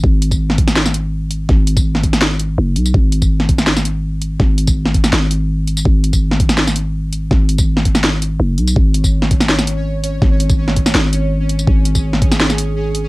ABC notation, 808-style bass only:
X:1
M:4/4
L:1/8
Q:1/4=165
K:C#m
V:1 name="808-style bass" clef=bass
G,,,8 | G,,,6 F,,, B,,, | G,,,8 | G,,,4 G,,,4 |
G,,,8 | G,,,6 F,,, B,,, | G,,,8 | G,,,4 G,,,4 |
G,,,8 |]